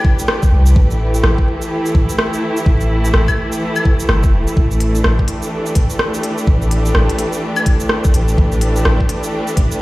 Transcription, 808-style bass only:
0, 0, Header, 1, 2, 480
1, 0, Start_track
1, 0, Tempo, 476190
1, 768, Time_signature, 4, 2, 24, 8
1, 9898, End_track
2, 0, Start_track
2, 0, Title_t, "808-style bass"
2, 0, Program_c, 0, 38
2, 525, Note_on_c, 0, 36, 96
2, 752, Note_off_c, 0, 36, 0
2, 768, Note_on_c, 0, 33, 97
2, 1236, Note_off_c, 0, 33, 0
2, 1246, Note_on_c, 0, 33, 86
2, 1383, Note_off_c, 0, 33, 0
2, 1963, Note_on_c, 0, 33, 80
2, 2101, Note_off_c, 0, 33, 0
2, 2684, Note_on_c, 0, 33, 95
2, 3154, Note_off_c, 0, 33, 0
2, 3165, Note_on_c, 0, 33, 84
2, 3302, Note_off_c, 0, 33, 0
2, 4121, Note_on_c, 0, 31, 96
2, 4260, Note_off_c, 0, 31, 0
2, 4361, Note_on_c, 0, 28, 97
2, 4500, Note_off_c, 0, 28, 0
2, 4604, Note_on_c, 0, 33, 95
2, 5074, Note_off_c, 0, 33, 0
2, 5089, Note_on_c, 0, 33, 85
2, 5224, Note_off_c, 0, 33, 0
2, 5805, Note_on_c, 0, 33, 77
2, 5942, Note_off_c, 0, 33, 0
2, 6524, Note_on_c, 0, 33, 97
2, 6994, Note_off_c, 0, 33, 0
2, 7007, Note_on_c, 0, 33, 86
2, 7143, Note_off_c, 0, 33, 0
2, 8205, Note_on_c, 0, 33, 92
2, 8432, Note_off_c, 0, 33, 0
2, 8446, Note_on_c, 0, 33, 92
2, 8915, Note_off_c, 0, 33, 0
2, 8928, Note_on_c, 0, 33, 87
2, 9064, Note_off_c, 0, 33, 0
2, 9648, Note_on_c, 0, 33, 77
2, 9784, Note_off_c, 0, 33, 0
2, 9898, End_track
0, 0, End_of_file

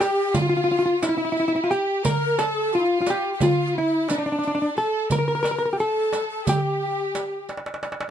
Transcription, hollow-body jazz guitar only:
0, 0, Header, 1, 2, 480
1, 0, Start_track
1, 0, Tempo, 680272
1, 1445, Time_signature, 9, 3, 24, 8
1, 5716, End_track
2, 0, Start_track
2, 0, Title_t, "Hollow-body jazz guitar"
2, 0, Program_c, 0, 26
2, 3, Note_on_c, 0, 67, 98
2, 242, Note_on_c, 0, 65, 82
2, 251, Note_off_c, 0, 67, 0
2, 286, Note_off_c, 0, 65, 0
2, 294, Note_on_c, 0, 65, 62
2, 340, Note_off_c, 0, 65, 0
2, 349, Note_on_c, 0, 65, 76
2, 393, Note_off_c, 0, 65, 0
2, 401, Note_on_c, 0, 65, 68
2, 443, Note_off_c, 0, 65, 0
2, 452, Note_on_c, 0, 65, 73
2, 497, Note_off_c, 0, 65, 0
2, 506, Note_on_c, 0, 65, 67
2, 548, Note_off_c, 0, 65, 0
2, 556, Note_on_c, 0, 65, 75
2, 596, Note_off_c, 0, 65, 0
2, 604, Note_on_c, 0, 65, 73
2, 664, Note_off_c, 0, 65, 0
2, 726, Note_on_c, 0, 64, 95
2, 760, Note_off_c, 0, 64, 0
2, 768, Note_on_c, 0, 64, 68
2, 823, Note_off_c, 0, 64, 0
2, 831, Note_on_c, 0, 64, 75
2, 872, Note_off_c, 0, 64, 0
2, 881, Note_on_c, 0, 64, 62
2, 924, Note_off_c, 0, 64, 0
2, 933, Note_on_c, 0, 64, 75
2, 978, Note_off_c, 0, 64, 0
2, 986, Note_on_c, 0, 64, 65
2, 1036, Note_off_c, 0, 64, 0
2, 1044, Note_on_c, 0, 64, 81
2, 1091, Note_off_c, 0, 64, 0
2, 1099, Note_on_c, 0, 64, 63
2, 1151, Note_off_c, 0, 64, 0
2, 1155, Note_on_c, 0, 65, 70
2, 1205, Note_off_c, 0, 65, 0
2, 1205, Note_on_c, 0, 67, 97
2, 1447, Note_off_c, 0, 67, 0
2, 1450, Note_on_c, 0, 70, 104
2, 1681, Note_off_c, 0, 70, 0
2, 1684, Note_on_c, 0, 69, 98
2, 1932, Note_off_c, 0, 69, 0
2, 1940, Note_on_c, 0, 65, 85
2, 2119, Note_off_c, 0, 65, 0
2, 2128, Note_on_c, 0, 65, 68
2, 2171, Note_off_c, 0, 65, 0
2, 2189, Note_on_c, 0, 67, 101
2, 2419, Note_on_c, 0, 65, 88
2, 2424, Note_off_c, 0, 67, 0
2, 2659, Note_off_c, 0, 65, 0
2, 2668, Note_on_c, 0, 64, 86
2, 2897, Note_off_c, 0, 64, 0
2, 2900, Note_on_c, 0, 62, 81
2, 2942, Note_off_c, 0, 62, 0
2, 2951, Note_on_c, 0, 62, 65
2, 2994, Note_off_c, 0, 62, 0
2, 3006, Note_on_c, 0, 62, 75
2, 3041, Note_off_c, 0, 62, 0
2, 3050, Note_on_c, 0, 62, 61
2, 3087, Note_off_c, 0, 62, 0
2, 3096, Note_on_c, 0, 62, 66
2, 3145, Note_off_c, 0, 62, 0
2, 3157, Note_on_c, 0, 62, 68
2, 3200, Note_off_c, 0, 62, 0
2, 3209, Note_on_c, 0, 62, 71
2, 3251, Note_off_c, 0, 62, 0
2, 3259, Note_on_c, 0, 62, 60
2, 3306, Note_off_c, 0, 62, 0
2, 3372, Note_on_c, 0, 69, 92
2, 3592, Note_off_c, 0, 69, 0
2, 3614, Note_on_c, 0, 70, 97
2, 3650, Note_off_c, 0, 70, 0
2, 3659, Note_on_c, 0, 70, 68
2, 3713, Note_off_c, 0, 70, 0
2, 3725, Note_on_c, 0, 70, 76
2, 3767, Note_off_c, 0, 70, 0
2, 3775, Note_on_c, 0, 70, 70
2, 3821, Note_off_c, 0, 70, 0
2, 3830, Note_on_c, 0, 70, 83
2, 3877, Note_off_c, 0, 70, 0
2, 3890, Note_on_c, 0, 70, 73
2, 3933, Note_off_c, 0, 70, 0
2, 3941, Note_on_c, 0, 70, 81
2, 3982, Note_off_c, 0, 70, 0
2, 3990, Note_on_c, 0, 70, 75
2, 4037, Note_off_c, 0, 70, 0
2, 4043, Note_on_c, 0, 67, 66
2, 4088, Note_off_c, 0, 67, 0
2, 4094, Note_on_c, 0, 69, 82
2, 4579, Note_off_c, 0, 69, 0
2, 4582, Note_on_c, 0, 67, 75
2, 5265, Note_off_c, 0, 67, 0
2, 5716, End_track
0, 0, End_of_file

